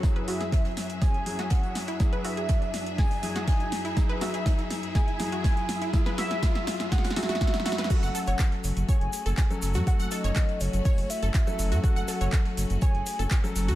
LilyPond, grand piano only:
\new Staff \with { instrumentName = "Grand piano" } { \time 4/4 \key fis \minor \tempo 4 = 122 <fis e' gis'>2~ <fis e' gis'>8 <fis e' gis'>4. | <fis e' gis'>2~ <fis e' gis'>8 <fis e' gis'>4. | <fis e' gis'>2~ <fis e' gis'>8 <fis e' gis'>4. | <fis e' gis'>2~ <fis e' gis'>8 <fis e' gis'>4. |
<fis cis' a'>2~ <fis cis' a'>8 r8. <fis cis' a'>8. | <fis cis' a'>2~ <fis cis' a'>8 r8. <fis cis' a'>8. | <fis cis' a'>2~ <fis cis' a'>8 r8. <fis cis' a'>8. | }